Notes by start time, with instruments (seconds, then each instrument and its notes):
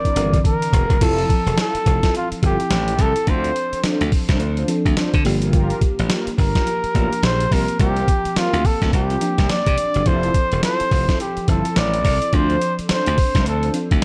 Already playing: fm electric piano E3 C4 D4 A#4, muted trumpet D5
0.04 analog polysynth D4 E4 A#4, muted slap bass stroke, kick, closed hi-hat
0.15 slap bass G1, fm electric piano D3 C4 D4 A#4, closed hi-hat
0.22 fm electric piano E3
0.33 kick, closed hi-hat
0.45 muted trumpet A#4, kick, closed hi-hat
0.62 closed hi-hat
0.73 slap bass E1, kick, closed hi-hat
0.90 slap bass F#1, kick, closed hi-hat
1.01 slap bass F1, fm electric piano F3 C4 E4 A4, analog polysynth E4 F4 A4, muted trumpet A4, kick, closed hi-hat, crash
1.18 closed hi-hat
1.29 kick, closed hi-hat
1.46 slap bass E1, closed hi-hat
1.58 analog polysynth E4 F4 A4, muted trumpet A4, snare, closed hi-hat
1.75 muted slap bass stroke, closed hi-hat
1.86 slap bass F1, kick, closed hi-hat
2.03 analog polysynth E4 F4 A4, kick, snare, closed hi-hat
2.15 muted trumpet F4, closed hi-hat
2.32 muted slap bass stroke, closed hi-hat
2.42 slap bass G1, fm electric piano F3 C4 E4 A4, analog polysynth E4 F4 A4, muted trumpet G4, kick, closed hi-hat
2.60 closed hi-hat
2.70 slap bass A1, snare, closed hi-hat
2.88 closed hi-hat
2.99 slap bass C2, muted trumpet A4, kick, closed hi-hat
3.16 closed hi-hat
3.27 slap bass D2, fm electric piano F3 C4 D4 A4, analog polysynth D4 F4 C5, muted trumpet C5, kick, closed hi-hat
3.44 closed hi-hat
3.56 closed hi-hat
3.73 muted slap bass stroke, closed hi-hat
3.84 analog polysynth D4 F4 C5, muted slap bass stroke, snare, closed hi-hat
4.01 slap bass D2, closed hi-hat
4.12 kick, open hi-hat
4.29 slap bass C2, analog polysynth D4 F4 C5, kick, snare, closed hi-hat
4.40 slap bass D2, closed hi-hat
4.57 analog polysynth D4 F4 C5, closed hi-hat
4.68 fm electric piano F3 C4 D4 A4, closed hi-hat
4.86 slap bass D2, kick, closed hi-hat
4.97 analog polysynth D4 F4 C5, snare, closed hi-hat
5.14 slap bass D3, kick, closed hi-hat
5.25 slap bass G1, fm electric piano F3 A#3 D4 G4, open hi-hat
5.42 analog polysynth F4 G4 A#4, closed hi-hat
5.53 analog polysynth F4 G4 A#4, kick, closed hi-hat
5.70 closed hi-hat
5.81 kick, closed hi-hat
5.99 slap bass A1, closed hi-hat
6.10 analog polysynth F4 G4 A#4, snare, closed hi-hat
6.27 muted slap bass stroke, closed hi-hat
6.38 slap bass G1, muted trumpet A#4, kick, open hi-hat
6.55 analog polysynth F4 G4 A#4, kick, snare, closed hi-hat
6.67 closed hi-hat
6.84 muted slap bass stroke, closed hi-hat
6.94 slap bass A1, fm electric piano F3 A#3 D4 G4, analog polysynth F4 G4 A#4, kick, closed hi-hat
7.13 closed hi-hat
7.22 slap bass A#1, muted trumpet C5, snare, closed hi-hat
7.40 closed hi-hat
7.51 slap bass C2, fm electric piano F3 A#3 C4 G4, muted trumpet A#4, kick, open hi-hat
7.68 closed hi-hat
7.79 slap bass C2, analog polysynth C4 F4 A#4, muted trumpet G4, kick, closed hi-hat
7.96 closed hi-hat
8.08 kick, closed hi-hat
8.25 muted slap bass stroke, closed hi-hat
8.36 analog polysynth C4 F4 A#4, muted trumpet F4, muted slap bass stroke, snare, closed hi-hat
8.53 slap bass D2, closed hi-hat
8.65 muted trumpet A4, kick, open hi-hat
8.82 slap bass D2, analog polysynth C4 F4 A#4, kick, snare, closed hi-hat
8.93 slap bass C2, muted trumpet G4, kick, closed hi-hat
9.10 analog polysynth C4 F4 A#4, closed hi-hat
9.21 fm electric piano F3 A#3 C4 D4, closed hi-hat
9.38 slap bass C2, kick, snare, closed hi-hat
9.49 muted trumpet D5, snare, closed hi-hat
9.66 slap bass C3, kick, closed hi-hat
9.78 closed hi-hat
9.94 slap bass F#1, closed hi-hat
10.06 slap bass F1, fm electric piano F3 C4 E4 A4, analog polysynth E4 F4 A4, muted trumpet C5, kick, closed hi-hat
10.23 closed hi-hat
10.34 kick, closed hi-hat
10.52 slap bass E1, closed hi-hat
10.63 analog polysynth E4 F4 A4, muted trumpet C5, snare, closed hi-hat
10.80 muted slap bass stroke, closed hi-hat
10.91 slap bass F1, kick, open hi-hat
11.08 analog polysynth E4 F4 A4, kick, snare, closed hi-hat
11.20 muted trumpet G4, closed hi-hat
11.37 muted slap bass stroke, closed hi-hat
11.48 slap bass G1, fm electric piano F3 C4 E4 A4, analog polysynth E4 F4 A4, muted trumpet A4, kick, closed hi-hat
11.65 closed hi-hat
11.76 slap bass A1, muted trumpet D5, snare, closed hi-hat
11.94 closed hi-hat
12.04 slap bass C2, kick, open hi-hat
12.22 closed hi-hat
12.32 slap bass D2, fm electric piano F3 C4 D4 A4, analog polysynth D4 F4 C5, muted trumpet C5, kick, closed hi-hat
12.50 closed hi-hat
12.62 closed hi-hat
12.79 muted slap bass stroke, closed hi-hat
12.89 analog polysynth D4 F4 C5, muted trumpet C5, muted slap bass stroke, snare, closed hi-hat
13.06 slap bass D2, closed hi-hat
13.18 kick, open hi-hat
13.35 slap bass C2, analog polysynth D4 F4 C5, kick, snare, closed hi-hat
13.46 slap bass D2, muted trumpet A4, closed hi-hat
13.63 analog polysynth D4 F4 C5, closed hi-hat
13.74 fm electric piano F3 C4 D4 A4, closed hi-hat
13.91 slap bass D2, kick, closed hi-hat